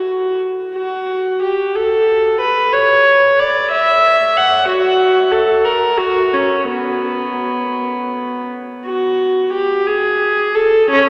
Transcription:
0, 0, Header, 1, 2, 480
1, 0, Start_track
1, 0, Key_signature, 2, "minor"
1, 0, Tempo, 688073
1, 527, Time_signature, 6, 3, 24, 8
1, 995, Tempo, 650759
1, 4355, Tempo, 715990
1, 6275, Tempo, 684932
1, 7848, End_track
2, 0, Start_track
2, 0, Title_t, "Viola"
2, 0, Program_c, 0, 41
2, 0, Note_on_c, 0, 66, 59
2, 259, Note_off_c, 0, 66, 0
2, 528, Note_on_c, 0, 66, 63
2, 967, Note_off_c, 0, 66, 0
2, 994, Note_on_c, 0, 67, 56
2, 1232, Note_off_c, 0, 67, 0
2, 1234, Note_on_c, 0, 69, 67
2, 1719, Note_off_c, 0, 69, 0
2, 1719, Note_on_c, 0, 71, 69
2, 1956, Note_off_c, 0, 71, 0
2, 1957, Note_on_c, 0, 73, 74
2, 2443, Note_off_c, 0, 73, 0
2, 2448, Note_on_c, 0, 74, 71
2, 2682, Note_on_c, 0, 76, 86
2, 2686, Note_off_c, 0, 74, 0
2, 3146, Note_off_c, 0, 76, 0
2, 3165, Note_on_c, 0, 78, 85
2, 3397, Note_off_c, 0, 78, 0
2, 3397, Note_on_c, 0, 66, 79
2, 3862, Note_off_c, 0, 66, 0
2, 3864, Note_on_c, 0, 69, 72
2, 4107, Note_off_c, 0, 69, 0
2, 4111, Note_on_c, 0, 70, 68
2, 4354, Note_on_c, 0, 66, 77
2, 4356, Note_off_c, 0, 70, 0
2, 4587, Note_off_c, 0, 66, 0
2, 4590, Note_on_c, 0, 61, 65
2, 4828, Note_off_c, 0, 61, 0
2, 4833, Note_on_c, 0, 59, 62
2, 6015, Note_off_c, 0, 59, 0
2, 6284, Note_on_c, 0, 66, 66
2, 6726, Note_off_c, 0, 66, 0
2, 6754, Note_on_c, 0, 67, 66
2, 6982, Note_off_c, 0, 67, 0
2, 6990, Note_on_c, 0, 68, 74
2, 7468, Note_on_c, 0, 69, 83
2, 7473, Note_off_c, 0, 68, 0
2, 7716, Note_off_c, 0, 69, 0
2, 7716, Note_on_c, 0, 61, 94
2, 7834, Note_off_c, 0, 61, 0
2, 7848, End_track
0, 0, End_of_file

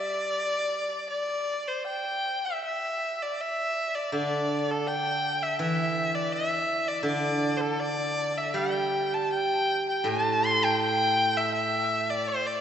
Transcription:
0, 0, Header, 1, 3, 480
1, 0, Start_track
1, 0, Tempo, 728155
1, 741, Time_signature, 2, 2, 24, 8
1, 741, Tempo, 754717
1, 2661, Tempo, 726392
1, 4581, Tempo, 755668
1, 6021, Tempo, 733496
1, 8175, End_track
2, 0, Start_track
2, 0, Title_t, "Erhu"
2, 0, Program_c, 0, 110
2, 0, Note_on_c, 0, 74, 93
2, 723, Note_off_c, 0, 74, 0
2, 727, Note_on_c, 0, 74, 81
2, 1093, Note_on_c, 0, 72, 66
2, 1103, Note_off_c, 0, 74, 0
2, 1214, Note_off_c, 0, 72, 0
2, 1217, Note_on_c, 0, 79, 80
2, 1588, Note_on_c, 0, 76, 64
2, 1598, Note_off_c, 0, 79, 0
2, 1705, Note_off_c, 0, 76, 0
2, 1709, Note_on_c, 0, 76, 82
2, 2074, Note_on_c, 0, 74, 73
2, 2084, Note_off_c, 0, 76, 0
2, 2192, Note_on_c, 0, 76, 79
2, 2202, Note_off_c, 0, 74, 0
2, 2538, Note_on_c, 0, 74, 67
2, 2547, Note_off_c, 0, 76, 0
2, 2659, Note_off_c, 0, 74, 0
2, 2664, Note_on_c, 0, 74, 77
2, 3035, Note_on_c, 0, 69, 76
2, 3045, Note_off_c, 0, 74, 0
2, 3146, Note_on_c, 0, 79, 89
2, 3156, Note_off_c, 0, 69, 0
2, 3510, Note_on_c, 0, 76, 75
2, 3520, Note_off_c, 0, 79, 0
2, 3629, Note_off_c, 0, 76, 0
2, 3633, Note_on_c, 0, 76, 84
2, 3987, Note_on_c, 0, 74, 77
2, 3997, Note_off_c, 0, 76, 0
2, 4102, Note_on_c, 0, 76, 91
2, 4112, Note_off_c, 0, 74, 0
2, 4469, Note_on_c, 0, 74, 78
2, 4479, Note_off_c, 0, 76, 0
2, 4585, Note_off_c, 0, 74, 0
2, 4588, Note_on_c, 0, 74, 81
2, 4912, Note_on_c, 0, 72, 50
2, 4922, Note_off_c, 0, 74, 0
2, 4938, Note_on_c, 0, 69, 75
2, 4947, Note_off_c, 0, 72, 0
2, 5057, Note_on_c, 0, 74, 91
2, 5066, Note_off_c, 0, 69, 0
2, 5424, Note_on_c, 0, 76, 72
2, 5433, Note_off_c, 0, 74, 0
2, 5543, Note_on_c, 0, 79, 72
2, 5552, Note_off_c, 0, 76, 0
2, 5910, Note_on_c, 0, 81, 81
2, 5919, Note_off_c, 0, 79, 0
2, 6025, Note_off_c, 0, 81, 0
2, 6032, Note_on_c, 0, 79, 88
2, 6363, Note_off_c, 0, 79, 0
2, 6401, Note_on_c, 0, 79, 75
2, 6517, Note_on_c, 0, 81, 86
2, 6527, Note_off_c, 0, 79, 0
2, 6765, Note_on_c, 0, 84, 94
2, 6775, Note_off_c, 0, 81, 0
2, 6890, Note_on_c, 0, 79, 85
2, 6900, Note_off_c, 0, 84, 0
2, 6999, Note_off_c, 0, 79, 0
2, 7006, Note_on_c, 0, 79, 98
2, 7366, Note_on_c, 0, 76, 86
2, 7376, Note_off_c, 0, 79, 0
2, 7474, Note_off_c, 0, 76, 0
2, 7481, Note_on_c, 0, 76, 89
2, 7844, Note_on_c, 0, 74, 82
2, 7854, Note_off_c, 0, 76, 0
2, 7965, Note_on_c, 0, 72, 91
2, 7975, Note_off_c, 0, 74, 0
2, 8081, Note_on_c, 0, 74, 83
2, 8090, Note_off_c, 0, 72, 0
2, 8175, Note_off_c, 0, 74, 0
2, 8175, End_track
3, 0, Start_track
3, 0, Title_t, "Guzheng"
3, 0, Program_c, 1, 107
3, 0, Note_on_c, 1, 55, 53
3, 257, Note_off_c, 1, 55, 0
3, 2648, Note_on_c, 1, 50, 52
3, 3618, Note_on_c, 1, 52, 56
3, 4100, Note_off_c, 1, 50, 0
3, 4567, Note_on_c, 1, 50, 53
3, 5046, Note_off_c, 1, 52, 0
3, 5527, Note_on_c, 1, 55, 54
3, 6015, Note_off_c, 1, 50, 0
3, 6495, Note_on_c, 1, 45, 57
3, 6981, Note_off_c, 1, 55, 0
3, 7935, Note_off_c, 1, 45, 0
3, 8175, End_track
0, 0, End_of_file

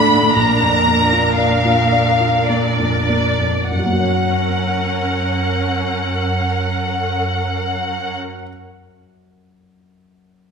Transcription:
0, 0, Header, 1, 5, 480
1, 0, Start_track
1, 0, Key_signature, 6, "major"
1, 0, Tempo, 1010101
1, 168, Time_signature, 3, 2, 24, 8
1, 654, Tempo, 1113173
1, 1134, Tempo, 1239669
1, 2574, Tempo, 1224490
1, 4262, End_track
2, 0, Start_track
2, 0, Title_t, "Violin section"
2, 0, Program_c, 0, 48
2, 0, Note_on_c, 0, 83, 64
2, 165, Note_on_c, 0, 82, 54
2, 168, Note_off_c, 0, 83, 0
2, 648, Note_on_c, 0, 77, 48
2, 652, Note_off_c, 0, 82, 0
2, 1121, Note_off_c, 0, 77, 0
2, 1128, Note_on_c, 0, 74, 40
2, 1610, Note_off_c, 0, 74, 0
2, 1614, Note_on_c, 0, 78, 34
2, 3331, Note_off_c, 0, 78, 0
2, 4262, End_track
3, 0, Start_track
3, 0, Title_t, "Viola section"
3, 0, Program_c, 1, 48
3, 0, Note_on_c, 1, 62, 52
3, 0, Note_on_c, 1, 69, 48
3, 167, Note_off_c, 1, 69, 0
3, 170, Note_on_c, 1, 70, 45
3, 1487, Note_off_c, 1, 62, 0
3, 1488, Note_off_c, 1, 70, 0
3, 1615, Note_on_c, 1, 61, 35
3, 1615, Note_on_c, 1, 70, 33
3, 3332, Note_off_c, 1, 61, 0
3, 3332, Note_off_c, 1, 70, 0
3, 4262, End_track
4, 0, Start_track
4, 0, Title_t, "Grand piano"
4, 0, Program_c, 2, 0
4, 0, Control_c, 2, 64, 127
4, 0, Note_on_c, 2, 38, 37
4, 0, Note_on_c, 2, 45, 27
4, 0, Note_on_c, 2, 57, 30
4, 0, Note_on_c, 2, 66, 30
4, 0, Note_on_c, 2, 74, 37
4, 54, Note_off_c, 2, 45, 0
4, 54, Note_on_c, 2, 45, 29
4, 123, Note_off_c, 2, 57, 0
4, 151, Note_off_c, 2, 38, 0
4, 168, Note_off_c, 2, 45, 0
4, 171, Note_on_c, 2, 34, 35
4, 177, Control_c, 2, 64, 0
4, 179, Note_off_c, 2, 66, 0
4, 180, Note_off_c, 2, 74, 0
4, 273, Control_c, 2, 64, 127
4, 290, Note_on_c, 2, 41, 29
4, 415, Note_on_c, 2, 58, 27
4, 481, Note_off_c, 2, 41, 0
4, 537, Note_on_c, 2, 65, 26
4, 608, Note_off_c, 2, 58, 0
4, 656, Note_on_c, 2, 74, 27
4, 727, Note_off_c, 2, 65, 0
4, 773, Note_on_c, 2, 65, 27
4, 842, Note_off_c, 2, 74, 0
4, 889, Note_on_c, 2, 74, 28
4, 962, Note_off_c, 2, 65, 0
4, 1011, Note_on_c, 2, 65, 24
4, 1084, Note_off_c, 2, 74, 0
4, 1135, Note_on_c, 2, 58, 24
4, 1203, Note_off_c, 2, 65, 0
4, 1252, Note_on_c, 2, 41, 22
4, 1321, Note_off_c, 2, 58, 0
4, 1367, Note_on_c, 2, 58, 23
4, 1444, Note_off_c, 2, 41, 0
4, 1487, Note_on_c, 2, 41, 18
4, 1563, Note_off_c, 2, 58, 0
4, 1598, Note_off_c, 2, 34, 0
4, 1608, Note_on_c, 2, 42, 20
4, 1610, Note_off_c, 2, 41, 0
4, 1622, Control_c, 2, 64, 0
4, 1638, Note_on_c, 2, 54, 22
4, 1663, Note_on_c, 2, 58, 22
4, 1691, Note_on_c, 2, 66, 22
4, 1718, Note_on_c, 2, 73, 22
4, 1723, Control_c, 2, 64, 127
4, 1744, Note_on_c, 2, 78, 23
4, 3325, Note_off_c, 2, 42, 0
4, 3355, Note_off_c, 2, 54, 0
4, 3381, Note_off_c, 2, 58, 0
4, 3409, Note_off_c, 2, 66, 0
4, 3436, Note_off_c, 2, 73, 0
4, 3463, Note_off_c, 2, 78, 0
4, 4262, End_track
5, 0, Start_track
5, 0, Title_t, "Cello section"
5, 0, Program_c, 3, 48
5, 0, Note_on_c, 3, 50, 42
5, 149, Note_off_c, 3, 50, 0
5, 169, Note_on_c, 3, 46, 40
5, 1503, Note_off_c, 3, 46, 0
5, 1611, Note_on_c, 3, 42, 30
5, 3328, Note_off_c, 3, 42, 0
5, 4262, End_track
0, 0, End_of_file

